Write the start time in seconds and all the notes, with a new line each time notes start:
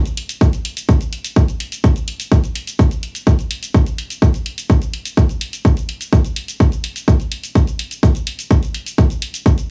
0.06 closed hi-hat, cabasa
0.17 closed hi-hat
0.29 closed hi-hat, cabasa
0.41 kick, closed hi-hat, cabasa
0.53 closed hi-hat, cabasa
0.65 closed hi-hat
0.77 closed hi-hat, cabasa
0.89 kick, closed hi-hat, cabasa
1.01 closed hi-hat, cabasa
1.13 closed hi-hat
1.25 closed hi-hat, cabasa
1.36 kick, closed hi-hat, cabasa
1.48 closed hi-hat, cabasa
1.60 closed hi-hat
1.72 closed hi-hat, cabasa
1.84 kick, closed hi-hat, cabasa
1.96 closed hi-hat, cabasa
2.08 closed hi-hat
2.20 closed hi-hat, cabasa
2.32 kick, closed hi-hat, cabasa
2.44 closed hi-hat, cabasa
2.55 closed hi-hat
2.67 closed hi-hat, cabasa
2.79 kick, closed hi-hat, cabasa
2.91 closed hi-hat, cabasa
3.03 closed hi-hat
3.15 closed hi-hat, cabasa
3.27 kick, closed hi-hat, cabasa
3.39 closed hi-hat, cabasa
3.51 closed hi-hat
3.63 closed hi-hat, cabasa
3.74 kick, closed hi-hat, cabasa
3.86 closed hi-hat, cabasa
3.98 closed hi-hat
4.10 closed hi-hat, cabasa
4.22 kick, closed hi-hat, cabasa
4.34 closed hi-hat, cabasa
4.46 closed hi-hat
4.58 closed hi-hat, cabasa
4.70 kick, closed hi-hat, cabasa
4.82 closed hi-hat, cabasa
4.94 closed hi-hat
5.05 closed hi-hat, cabasa
5.17 kick, closed hi-hat, cabasa
5.29 closed hi-hat, cabasa
5.41 closed hi-hat
5.53 closed hi-hat, cabasa
5.65 kick, closed hi-hat, cabasa
5.77 closed hi-hat, cabasa
5.89 closed hi-hat
6.01 closed hi-hat, cabasa
6.13 kick, closed hi-hat, cabasa
6.25 closed hi-hat, cabasa
6.36 closed hi-hat
6.48 closed hi-hat, cabasa
6.60 kick, closed hi-hat, cabasa
6.72 closed hi-hat, cabasa
6.84 closed hi-hat
6.96 closed hi-hat, cabasa
7.08 kick, closed hi-hat, cabasa
7.20 closed hi-hat, cabasa
7.32 closed hi-hat
7.44 closed hi-hat, cabasa
7.55 kick, closed hi-hat, cabasa
7.67 closed hi-hat, cabasa
7.79 closed hi-hat
7.91 closed hi-hat, cabasa
8.03 kick, closed hi-hat, cabasa
8.15 closed hi-hat, cabasa
8.27 closed hi-hat
8.39 closed hi-hat, cabasa
8.51 kick, closed hi-hat, cabasa
8.63 closed hi-hat, cabasa
8.74 closed hi-hat
8.86 closed hi-hat, cabasa
8.98 kick, closed hi-hat, cabasa
9.10 closed hi-hat, cabasa
9.22 closed hi-hat
9.34 closed hi-hat, cabasa
9.46 kick, closed hi-hat, cabasa
9.58 closed hi-hat, cabasa